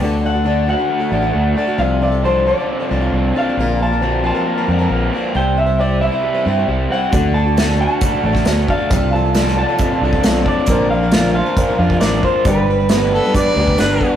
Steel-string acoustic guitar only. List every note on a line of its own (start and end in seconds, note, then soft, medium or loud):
0.02 0.24 D3 medium
0.02 0.21 A3 medium
0.02 0.22 D4 medium
0.02 0.24 F#4 medium
0.02 0.25 A4 medium
0.22 0.34 A3 medium
0.22 0.35 D4 medium
0.22 0.34 F#4 medium
0.26 0.33 A4 medium
0.34 0.44 D4 soft
0.34 0.45 F#4 soft
0.34 0.45 A4 soft
0.44 0.67 D3 medium
0.44 0.65 A3 medium
0.44 0.67 D4 medium
0.44 0.68 F#4 medium
0.44 0.68 A4 medium
0.66 0.78 A3 medium
0.66 0.79 D4 medium
0.66 0.78 F#4 medium
0.66 0.76 A4 medium
0.78 1.01 D4 soft
0.78 1.00 F#4 soft
0.78 0.99 A4 soft
1.00 1.10 D4 soft
1.00 1.11 F#4 soft
1.00 1.11 A4 soft
1.10 1.22 A3 medium
1.10 1.23 D4 medium
1.10 1.21 F#4 medium
1.10 1.19 A4 medium
1.21 1.56 D4 soft
1.21 1.56 F#4 soft
1.21 1.55 A4 medium
1.55 1.67 A3 medium
1.55 1.68 D4 medium
1.55 1.67 F#4 medium
1.55 1.66 A4 medium
1.67 1.78 D4 soft
1.67 1.79 F#4 soft
1.67 1.79 A4 soft
1.78 2.01 C3 medium
1.78 2.00 F3 medium
1.78 2.00 D4 medium
1.78 2.02 F4 medium
1.78 2.02 A4 medium
2.01 2.12 F3 medium
2.01 2.13 D4 medium
2.01 2.11 F4 medium
2.01 2.11 A4 medium
2.12 2.24 D4 soft
2.12 2.24 F4 soft
2.12 2.23 A4 soft
2.24 2.46 C3 medium
2.24 2.45 F3 medium
2.24 2.45 D4 medium
2.24 2.47 F4 medium
2.24 2.47 A4 medium
2.46 2.57 F3 medium
2.46 2.57 D4 medium
2.46 2.57 F4 medium
2.46 2.56 A4 medium
2.58 2.81 D4 soft
2.58 2.80 F4 soft
2.58 2.79 A4 soft
2.80 2.90 D4 soft
2.80 2.90 F4 soft
2.80 2.91 A4 soft
2.89 3.01 F3 soft
2.89 3.02 D4 medium
2.89 3.00 F4 medium
2.89 2.99 A4 medium
3.00 3.33 D4 soft
3.00 3.34 F4 soft
3.00 3.34 A4 medium
3.33 3.45 F3 medium
3.33 3.46 D4 medium
3.33 3.46 F4 medium
3.33 3.46 A4 medium
3.47 3.59 D4 soft
3.47 3.59 F4 soft
3.47 3.58 A4 soft
3.59 3.80 A#2 medium
3.59 3.80 D3 medium
3.59 3.78 F3 medium
3.59 3.79 C4 medium
3.59 3.80 D4 medium
3.59 3.81 A#4 medium
3.79 3.90 F3 medium
3.79 3.91 C4 medium
3.79 3.91 D4 medium
3.79 3.90 A#4 medium
3.91 4.01 F3 soft
3.91 4.02 C4 soft
3.91 4.02 D4 medium
3.91 4.02 A#4 soft
4.01 4.24 A#2 medium
4.01 4.24 D3 medium
4.01 4.22 F3 medium
4.01 4.23 C4 medium
4.01 4.24 D4 medium
4.01 4.25 A#4 medium
4.23 4.35 F3 medium
4.23 4.35 C4 medium
4.23 4.35 D4 medium
4.23 4.33 A#4 medium
4.34 4.58 F3 soft
4.34 4.58 C4 soft
4.34 4.57 D4 soft
4.34 4.57 A#4 medium
4.58 4.65 F3 soft
4.58 4.67 C4 soft
4.58 4.68 D4 soft
4.58 4.68 A#4 medium
4.67 4.78 F3 medium
4.67 4.79 C4 medium
4.67 4.79 D4 medium
4.67 4.77 A#4 medium
4.79 5.12 F3 soft
4.79 5.13 C4 medium
4.79 5.13 D4 medium
4.79 5.12 A#4 medium
5.13 5.35 F3 medium
5.13 5.34 C4 medium
5.13 5.34 D4 medium
5.13 5.36 A#4 medium
5.34 5.57 C3 medium
5.34 5.56 G3 medium
5.34 5.56 C4 medium
5.34 5.57 E4 medium
5.34 5.58 C5 medium
5.57 5.68 G3 medium
5.57 5.68 C4 medium
5.57 5.67 E4 medium
5.57 5.65 C5 medium
5.66 5.79 C4 soft
5.66 5.79 E4 soft
5.66 5.78 C5 medium
5.78 6.01 C3 medium
5.78 6.01 G3 medium
5.78 6.01 C4 medium
5.78 6.02 E4 medium
5.78 6.02 C5 medium
6.02 6.13 G3 medium
6.02 6.13 C4 medium
6.02 6.12 E4 medium
6.02 6.10 C5 medium
6.12 6.36 C4 soft
6.12 6.35 E4 soft
6.12 6.33 C5 soft
6.35 6.46 E4 soft
6.35 6.46 C5 soft
6.39 6.45 C4 soft
6.45 6.57 G3 medium
6.45 6.57 C4 medium
6.45 6.58 E4 medium
6.45 6.56 C5 medium
6.57 6.91 C4 soft
6.57 6.91 E4 soft
6.57 6.90 C5 medium
6.91 7.12 G3 medium
6.91 7.12 C4 medium
6.91 7.13 E4 medium
6.91 7.14 C5 medium
7.12 7.34 D3 medium
7.12 7.33 A3 medium
7.12 7.34 D4 medium
7.12 7.35 F#4 medium
7.12 7.35 A4 medium
7.34 7.45 A3 medium
7.34 7.46 D4 medium
7.34 7.45 F#4 medium
7.34 7.43 A4 medium
7.44 7.56 D4 soft
7.44 7.56 F#4 soft
7.44 7.56 A4 soft
7.56 7.79 D3 medium
7.56 7.78 A3 medium
7.56 7.79 D4 medium
7.56 7.79 F#4 medium
7.56 7.80 A4 medium
7.79 7.90 A3 medium
7.79 7.90 D4 medium
7.79 7.88 F#4 medium
7.79 7.87 A4 medium
7.88 8.13 D4 soft
7.88 8.12 F#4 soft
7.88 8.11 A4 soft
8.12 8.23 D4 soft
8.12 8.24 F#4 soft
8.12 8.23 A4 medium
8.23 8.34 A3 medium
8.23 8.34 D4 medium
8.23 8.33 F#4 medium
8.23 8.31 A4 medium
8.32 8.68 D4 soft
8.32 8.68 F#4 medium
8.32 8.67 A4 medium
8.68 8.79 A3 medium
8.68 8.79 D4 medium
8.68 8.79 F#4 medium
8.68 8.77 A4 medium
8.78 8.91 D4 soft
8.78 8.91 F#4 soft
8.78 8.90 A4 soft
8.90 9.12 C3 medium
8.90 9.12 F3 medium
8.90 9.13 D4 medium
8.90 9.13 F4 medium
8.90 9.14 A4 medium
9.13 9.24 F3 medium
9.13 9.24 D4 medium
9.13 9.24 F4 medium
9.13 9.23 A4 medium
9.24 9.35 D4 soft
9.24 9.36 F4 soft
9.24 9.35 A4 soft
9.35 9.57 C3 medium
9.35 9.56 F3 medium
9.35 9.56 D4 medium
9.35 9.58 F4 medium
9.35 9.58 A4 medium
9.57 9.68 F3 medium
9.57 9.68 D4 medium
9.57 9.69 F4 medium
9.57 9.68 A4 medium
9.69 9.92 D4 soft
9.69 9.92 F4 soft
9.69 9.91 A4 medium
9.92 10.02 D4 soft
9.92 10.03 F4 medium
9.92 10.02 A4 medium
10.03 10.13 F3 medium
10.03 10.13 D4 medium
10.03 10.13 F4 medium
10.03 10.12 A4 medium
10.13 10.47 D4 soft
10.13 10.47 F4 soft
10.13 10.46 A4 medium
10.47 10.58 F3 medium
10.47 10.58 D4 medium
10.47 10.58 F4 medium
10.47 10.57 A4 medium
10.58 10.70 D4 soft
10.58 10.70 F4 soft
10.58 10.69 A4 soft
10.70 10.91 A#2 medium
10.70 10.91 D3 medium
10.70 10.90 F3 medium
10.70 10.91 C4 medium
10.70 10.92 D4 medium
10.70 10.92 A#4 medium
10.92 11.02 F3 medium
10.92 11.02 C4 medium
10.92 11.03 D4 medium
10.92 11.02 A#4 medium
11.03 11.13 F3 soft
11.03 11.13 C4 medium
11.03 11.13 D4 soft
11.03 11.13 A#4 medium
11.12 11.35 A#2 medium
11.12 11.35 D3 medium
11.12 11.33 F3 medium
11.12 11.35 C4 medium
11.12 11.35 D4 medium
11.12 11.36 A#4 medium
11.35 11.46 F3 medium
11.35 11.46 C4 medium
11.35 11.46 D4 medium
11.35 11.45 A#4 medium
11.46 11.70 F3 soft
11.46 11.69 C4 soft
11.46 11.68 D4 soft
11.46 11.67 A#4 medium
11.68 11.78 F3 soft
11.68 11.78 C4 soft
11.68 11.79 D4 medium
11.68 11.79 A#4 medium
11.79 11.90 F3 medium
11.79 11.90 C4 medium
11.79 11.91 D4 medium
11.79 11.89 A#4 medium
11.91 12.22 F3 soft
11.91 12.23 C4 soft
11.91 12.24 D4 soft
11.91 12.24 A#4 medium
12.23 12.45 F3 medium
12.23 12.45 C4 medium
12.23 12.44 D4 medium
12.23 12.46 A#4 medium
12.44 12.67 G2 medium
12.44 12.68 D3 medium
12.44 12.66 G3 medium
12.44 12.67 B3 medium
12.44 12.67 D4 medium
12.44 12.68 B4 medium
12.67 12.78 G3 medium
12.67 12.79 B3 medium
12.67 12.79 D4 medium
12.67 12.78 B4 medium
12.80 12.91 G3 soft
12.80 12.91 B3 soft
12.80 12.91 D4 soft
12.80 12.91 B4 medium
12.91 13.13 G2 medium
12.91 13.13 D3 medium
12.91 13.13 G3 medium
12.91 13.14 B3 medium
12.91 13.14 D4 medium
12.91 13.14 B4 medium
13.14 13.24 G3 medium
13.14 13.25 B3 medium
13.14 13.25 D4 medium
13.14 13.23 B4 medium
13.25 13.48 G3 medium
13.25 13.47 B3 medium
13.25 13.47 D4 medium
13.25 13.46 B4 medium
13.48 13.58 G3 soft
13.48 13.59 B3 medium
13.48 13.59 D4 medium
13.48 13.58 B4 medium
13.59 13.69 G3 medium
13.59 13.69 B3 medium
13.59 13.69 D4 medium
13.59 13.68 B4 medium
13.69 14.02 G3 soft
13.69 14.03 B3 medium
13.69 14.02 D4 medium
13.69 14.02 B4 medium
14.03 14.16 G3 medium
14.03 14.16 B3 medium
14.03 14.16 D4 medium
14.03 14.16 B4 medium